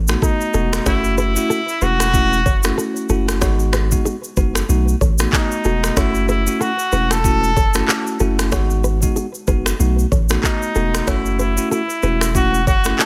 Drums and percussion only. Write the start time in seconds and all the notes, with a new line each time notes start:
0.08 finger snap, cross-stick, shaker
0.22 kick, shaker
0.41 shaker
0.54 shaker
0.73 finger snap, cross-stick, shaker
0.86 finger snap, kick, cross-stick, shaker
1.04 shaker
1.18 shaker
1.36 shaker
1.51 shaker
1.69 shaker
1.82 shaker
2.00 finger snap, cross-stick, shaker
2.14 kick, shaker
2.33 shaker
2.46 kick, shaker
2.63 finger snap, cross-stick, shaker
2.79 shaker
2.96 shaker
3.09 shaker
3.28 finger snap, cross-stick, shaker
3.41 finger snap, kick, cross-stick, shaker
3.60 shaker
3.73 finger snap, cross-stick, shaker
3.92 kick, shaker
4.06 shaker
4.24 shaker
4.37 kick, shaker
4.55 finger snap, cross-stick, shaker
4.69 shaker
4.88 shaker
5.01 kick, shaker
5.18 finger snap, cross-stick, shaker
5.33 kick, clap, shaker
5.51 shaker
5.64 shaker
5.84 finger snap, cross-stick, shaker
5.97 finger snap, kick, cross-stick, shaker
6.15 shaker
6.29 shaker
6.47 shaker
6.61 shaker
6.79 shaker
6.92 shaker
7.11 finger snap, cross-stick, shaker
7.24 kick, shaker
7.44 shaker
7.57 kick, shaker
7.74 finger snap, cross-stick, shaker
7.88 clap, shaker
8.07 shaker
8.20 shaker
8.39 finger snap, cross-stick, shaker
8.52 finger snap, kick, cross-stick, shaker
8.70 shaker
8.84 shaker
9.02 kick, shaker
9.16 shaker
9.34 shaker
9.47 kick, shaker
9.66 finger snap, cross-stick, shaker
9.80 shaker
9.99 shaker
10.12 kick, shaker
10.29 finger snap, cross-stick, shaker
10.43 kick, clap, shaker
10.62 shaker
10.75 shaker
10.94 finger snap, cross-stick, shaker
11.07 finger snap, kick, cross-stick, shaker
11.26 shaker
11.39 shaker
11.57 shaker
11.72 shaker
11.90 shaker
12.03 shaker
12.21 finger snap, cross-stick, shaker
12.35 kick, shaker
12.54 shaker
12.67 kick, shaker
12.84 finger snap, cross-stick, shaker
12.99 clap, shaker